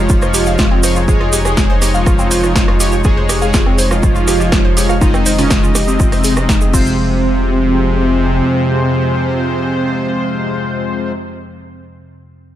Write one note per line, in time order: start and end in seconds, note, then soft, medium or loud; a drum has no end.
0.00 6.73 F1 medium
0.00 6.72 F2 medium
0.00 0.98 F3 loud
0.00 0.81 G#3 loud
0.00 6.70 G#3 medium
0.00 0.81 D#4 medium
0.00 6.70 D#4 medium
0.00 0.98 F4 loud
0.00 0.81 C#5 loud
0.00 6.70 D#5 medium
0.09 0.17 F4 medium
0.09 kick loud
0.09 cabasa medium
0.22 0.26 C5 loud
0.22 cross-stick medium
0.22 cabasa soft
0.34 0.45 G4 loud
0.34 open hi-hat loud
0.34 cabasa loud
0.46 0.54 F5 loud
0.46 cabasa soft
0.58 0.66 F4 loud
0.58 kick loud
0.58 cross-stick soft
0.58 snare loud
0.58 cabasa medium
0.71 0.82 C4 loud
0.83 1.05 G#3 loud
0.83 1.05 D#4 medium
0.83 0.88 C5 loud
0.83 1.05 C#5 loud
0.83 cross-stick medium
0.83 open hi-hat loud
0.83 cabasa medium
0.96 1.07 F4 medium
0.96 cabasa soft
1.08 2.77 G#3 loud
1.08 1.36 G#3 loud
1.08 2.77 D#4 medium
1.08 1.13 F4 medium
1.08 1.36 G#4 loud
1.08 2.77 C#5 loud
1.08 kick loud
1.08 cabasa medium
1.21 1.28 F4 loud
1.21 cross-stick medium
1.33 1.44 G4 loud
1.33 open hi-hat loud
1.33 cabasa medium
1.45 1.82 G#3 medium
1.45 1.52 G4 medium
1.45 1.82 G#4 loud
1.45 cross-stick medium
1.45 cabasa soft
1.57 1.65 F4 medium
1.57 kick loud
1.57 snare loud
1.57 cabasa soft
1.70 1.74 C5 loud
1.82 1.93 G4 loud
1.82 cross-stick medium
1.82 snare soft
1.82 open hi-hat loud
1.82 cabasa medium
1.94 2.95 F3 loud
1.94 2.95 F4 loud
1.94 2.02 F5 loud
1.94 cabasa soft
2.06 2.14 F4 loud
2.06 kick loud
2.06 cross-stick medium
2.06 cabasa medium
2.19 2.30 C4 loud
2.19 cabasa soft
2.31 2.35 C5 loud
2.31 open hi-hat loud
2.31 cabasa loud
2.43 2.54 F4 medium
2.43 cross-stick medium
2.43 cabasa soft
2.56 2.60 F4 medium
2.56 kick loud
2.56 snare loud
2.56 cabasa medium
2.68 2.75 F4 loud
2.68 cross-stick medium
2.80 3.02 G#3 loud
2.80 3.02 D#4 medium
2.80 2.91 G4 loud
2.80 3.02 C#5 loud
2.80 open hi-hat loud
2.80 cabasa medium
2.92 3.00 G4 medium
2.92 cabasa soft
3.04 3.33 G#3 loud
3.04 4.74 G#3 loud
3.04 3.12 F4 medium
3.04 3.33 G#4 loud
3.04 4.74 C#5 loud
3.04 kick loud
3.04 cross-stick medium
3.04 cabasa medium
3.17 3.22 C5 loud
3.29 3.40 G4 loud
3.29 cross-stick medium
3.29 open hi-hat loud
3.29 cabasa medium
3.42 3.79 G#3 loud
3.42 3.79 G#4 loud
3.42 3.49 F5 loud
3.42 cabasa soft
3.54 3.61 F4 loud
3.54 kick loud
3.54 snare loud
3.54 cabasa medium
3.66 3.77 C4 loud
3.66 cross-stick medium
3.78 3.83 C5 loud
3.78 open hi-hat loud
3.78 cabasa medium
3.91 4.92 F3 loud
3.91 4.02 F4 medium
3.91 4.92 F4 loud
3.91 cross-stick medium
3.91 cabasa soft
4.03 4.08 F4 medium
4.03 kick loud
4.03 cabasa soft
4.15 4.23 F4 loud
4.15 cabasa soft
4.28 4.39 G4 loud
4.28 cross-stick medium
4.28 open hi-hat loud
4.28 cabasa medium
4.40 4.47 G4 medium
4.40 cabasa soft
4.52 4.60 F4 medium
4.52 kick loud
4.52 cross-stick medium
4.52 snare loud
4.52 cabasa soft
4.65 4.69 C5 loud
4.77 4.99 G#3 loud
4.77 4.99 D#4 medium
4.77 4.88 G4 loud
4.77 4.99 C#5 loud
4.77 open hi-hat loud
4.77 cabasa loud
4.89 4.97 F5 loud
4.89 cross-stick medium
4.89 cabasa soft
5.01 5.29 D#3 loud
5.01 6.34 G#3 loud
5.01 5.29 D#4 loud
5.01 6.34 D#4 medium
5.01 5.09 F4 loud
5.01 6.34 D#5 loud
5.01 kick loud
5.01 cabasa medium
5.14 5.25 C4 loud
5.14 cross-stick medium
5.14 cabasa soft
5.26 5.31 C5 loud
5.26 open hi-hat loud
5.26 cabasa medium
5.38 5.75 C#3 loud
5.38 5.75 C#4 loud
5.38 5.49 F4 medium
5.38 open hi-hat medium
5.38 cabasa soft
5.51 5.55 F4 medium
5.51 kick loud
5.51 cross-stick medium
5.51 snare loud
5.51 cabasa medium
5.63 5.70 F4 loud
5.63 cabasa soft
5.75 5.86 G4 loud
5.75 cross-stick medium
5.75 snare soft
5.75 open hi-hat loud
5.75 cabasa loud
5.88 6.72 C3 loud
5.88 6.73 C4 loud
5.88 5.95 G4 medium
5.88 cabasa soft
6.00 6.07 F4 medium
6.00 kick loud
6.00 cabasa medium
6.12 6.17 C5 loud
6.12 cross-stick medium
6.12 open hi-hat medium
6.12 cabasa soft
6.24 6.36 G#4 medium
6.24 open hi-hat loud
6.24 cabasa medium
6.36 6.72 G#3 medium
6.36 6.44 C4 medium
6.36 6.74 D#4 medium
6.36 6.74 D#5 medium
6.36 cross-stick medium
6.36 cabasa soft
6.49 6.56 D#4 loud
6.49 kick loud
6.49 snare loud
6.49 cabasa soft
6.61 6.66 G#4 medium
6.61 cabasa soft
6.74 8.42 F1 loud
6.74 11.12 F2 medium
6.74 11.12 C3 loud
6.74 11.12 C3 medium
6.74 11.12 F3 medium
6.74 11.12 G#3 medium
6.74 11.12 C4 loud
6.74 11.12 C4 medium
6.74 7.19 F4 loud
6.74 11.12 F4 medium
6.74 11.12 G4 medium
6.74 11.12 G#4 medium
6.74 11.12 C5 loud
6.74 kick loud
6.74 crash medium
6.74 cabasa medium
6.86 cabasa soft